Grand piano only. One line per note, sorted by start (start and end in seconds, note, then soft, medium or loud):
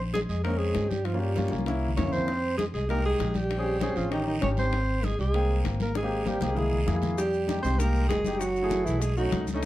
0.45 0.88 G#3 medium
0.45 0.88 C4 medium
0.45 0.89 C#4 medium
1.13 1.29 A#3 medium
1.13 1.30 C#4 medium
1.13 1.30 F4 medium
1.36 1.47 A#3 medium
1.36 1.47 C#4 medium
1.36 1.48 F4 medium
1.50 1.62 A#3 medium
1.50 1.62 C#4 medium
1.50 1.62 F4 medium
1.66 1.88 A#3 medium
1.66 1.88 C#4 medium
1.66 1.89 E4 medium
1.96 2.02 A#3 medium
1.96 2.03 C#4 medium
1.96 2.03 E4 medium
2.03 2.27 A#3 medium
2.03 2.28 C#4 medium
2.03 2.28 E4 medium
2.89 3.32 G#3 medium
2.89 3.32 D#4 medium
2.89 3.32 G4 medium
3.57 3.74 C4 medium
3.57 3.74 C#4 medium
3.57 3.75 G#4 medium
3.80 3.91 C4 medium
3.80 3.92 C#4 medium
3.80 3.93 G#4 medium
3.95 4.06 C4 medium
3.95 4.07 C#4 medium
3.95 4.07 G#4 medium
4.10 4.32 C#4 medium
4.10 4.33 D#4 medium
4.10 4.33 G4 medium
4.41 4.47 C#4 medium
4.41 4.48 D#4 medium
4.41 4.48 G4 medium
4.49 4.72 C#4 medium
4.49 4.73 D#4 medium
4.49 4.74 G4 medium
5.34 5.77 A#3 medium
5.34 5.77 C4 medium
5.34 5.78 G5 medium
6.02 6.19 A#3 medium
6.02 6.19 C4 medium
6.02 6.20 G4 medium
6.25 6.37 A#3 medium
6.25 6.37 C4 medium
6.25 6.37 G4 medium
6.41 6.52 A#3 medium
6.41 6.52 C4 medium
6.41 6.53 G4 medium
6.55 6.77 A#3 medium
6.55 6.77 E4 medium
6.55 6.78 G#4 medium
6.86 6.92 A#3 medium
6.86 6.92 E4 medium
6.86 6.93 G#4 medium
6.94 7.18 A#3 medium
6.94 7.18 E4 medium
6.94 7.18 G#4 medium
7.47 7.59 G#3 medium
7.47 7.59 D#4 medium
7.47 7.59 G4 medium
7.64 7.75 G#3 medium
7.64 7.75 D#4 medium
7.64 7.75 G4 medium
7.79 8.11 G#3 medium
7.79 8.12 D#4 medium
7.79 8.12 G4 medium
8.25 8.40 G#3 medium
8.25 8.41 D#4 medium
8.25 8.41 G4 medium
8.62 9.00 A3 medium
8.62 9.00 E4 medium
8.62 9.01 G#4 medium
9.16 9.43 A3 medium
9.16 9.44 C#4 medium
9.16 9.44 D#4 medium
9.54 9.62 A3 medium
9.54 9.62 C#4 medium
9.54 9.63 D#4 loud